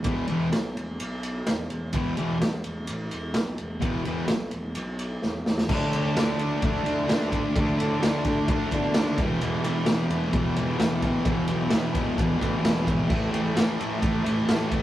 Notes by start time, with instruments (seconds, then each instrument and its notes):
0.04 picked electric bass E1, distorted electric guitar E2 B2 E3, kick, ride
0.28 picked electric bass E1, distorted electric guitar E2 B2 E3, ride
0.53 picked electric bass B1, snare, ride
0.77 picked electric bass E1, ride
1.00 picked electric bass B1, ride
1.23 ride
1.47 picked electric bass E1, snare, ride
1.70 picked electric bass E1, ride
1.93 picked electric bass E1, distorted electric guitar E2 B2 E3, kick, ride
2.17 picked electric bass E1, distorted electric guitar E2 B2 E3, ride
2.41 picked electric bass E1, snare, ride
2.64 picked electric bass E1, ride
2.87 picked electric bass A1, ride
3.11 picked electric bass E1, ride
3.34 picked electric bass B1, snare, ride
3.58 picked electric bass E1, ride
3.80 picked electric bass E1, distorted electric guitar E2 B2 E3, kick, ride
4.05 picked electric bass E1, distorted electric guitar E2 B2 E3, ride
4.28 picked electric bass B1, snare, ride
4.51 picked electric bass E1, ride
4.75 picked electric bass B1, ride
4.99 ride
5.22 picked electric bass E1, snare
5.46 picked electric bass E1, snare
5.58 snare
5.69 picked electric bass D2, distorted electric guitar D3 A3 D4, kick, crash
5.92 picked electric bass D2, distorted electric guitar A3 D4, ride
6.15 picked electric bass D2, distorted electric guitar D3 A3, snare, ride
6.20 distorted electric guitar D4
6.39 picked electric bass D2, distorted electric guitar D4, ride
6.43 distorted electric guitar A3
6.61 picked electric bass D2, distorted electric guitar D3 A3, kick, ride
6.66 distorted electric guitar D4
6.84 picked electric bass D2, distorted electric guitar A3 D4, ride
6.88 distorted electric guitar D3
7.07 distorted electric guitar D3 A3, snare, ride
7.11 picked electric bass D2, distorted electric guitar D4
7.21 snare
7.31 distorted electric guitar D4, kick, ride
7.35 distorted electric guitar A3
7.56 picked electric bass D2, distorted electric guitar D3 A3, kick, ride
7.60 distorted electric guitar D4
7.79 picked electric bass A2, distorted electric guitar A3 D4, ride
8.01 picked electric bass D2, distorted electric guitar D3 A3, snare, ride
8.06 distorted electric guitar D4
8.25 picked electric bass D2, distorted electric guitar D4, kick, ride
8.29 distorted electric guitar A3
8.48 picked electric bass D2, distorted electric guitar D3 A3, kick, ride
8.52 distorted electric guitar D4
8.71 picked electric bass B2, distorted electric guitar A3 D4, kick, ride
8.76 distorted electric guitar D3
8.94 picked electric bass D#2, distorted electric guitar D3 A3, snare, ride
9.00 distorted electric guitar D4
9.18 picked electric bass E1, distorted electric guitar E3, kick, ride
9.22 distorted electric guitar E2 B2
9.41 picked electric bass E1, distorted electric guitar E2 B2 E3, ride
9.63 picked electric bass E1, distorted electric guitar E3, ride
9.68 distorted electric guitar B2
9.86 picked electric bass E1, distorted electric guitar E2 B2, snare, ride
9.90 distorted electric guitar E3
10.07 picked electric bass E1, distorted electric guitar E3, ride
10.12 distorted electric guitar B2
10.32 picked electric bass E1, distorted electric guitar E2 B2, kick, ride
10.36 distorted electric guitar E3
10.56 picked electric bass E1, distorted electric guitar B2 E3, ride
10.61 distorted electric guitar E2
10.77 picked electric bass E1, distorted electric guitar E2 B2, snare, ride
10.81 distorted electric guitar E3
11.02 distorted electric guitar B2 E3, kick, ride
11.24 picked electric bass E1, distorted electric guitar E2 B2 E3, kick, ride
11.47 picked electric bass B1, distorted electric guitar E3, ride
11.52 distorted electric guitar B2
11.69 distorted electric guitar E2 B2, snare, ride
11.73 picked electric bass E1, distorted electric guitar E3
11.93 picked electric bass E1, distorted electric guitar E3, kick, ride
11.98 distorted electric guitar B2
12.17 picked electric bass E1, distorted electric guitar E2 B2 E3, kick, ride
12.38 distorted electric guitar B2 E3, kick
12.42 picked electric bass D2, distorted electric guitar E2, ride
12.60 distorted electric guitar E2 B2
12.65 picked electric bass E1, distorted electric guitar E3, snare, ride
12.76 snare
12.83 distorted electric guitar B2 E3
12.87 picked electric bass G#1, kick, ride
13.08 picked electric bass A1, distorted electric guitar A2 E3 A3, kick, crash
13.30 distorted electric guitar E3 A3, ride
13.35 picked electric bass A1
13.54 distorted electric guitar A2 E3, snare, ride
13.58 picked electric bass A1, distorted electric guitar A3
13.75 distorted electric guitar A3
13.80 picked electric bass A1, distorted electric guitar E3, ride
13.98 distorted electric guitar A2 E3, kick
14.03 picked electric bass A1, distorted electric guitar A3, ride
14.23 distorted electric guitar E3 A3, ride
14.27 picked electric bass A1, distorted electric guitar A2
14.46 picked electric bass A1, distorted electric guitar A2 E3 A3, snare, ride
14.60 snare
14.68 distorted electric guitar A3, kick, ride
14.73 distorted electric guitar E3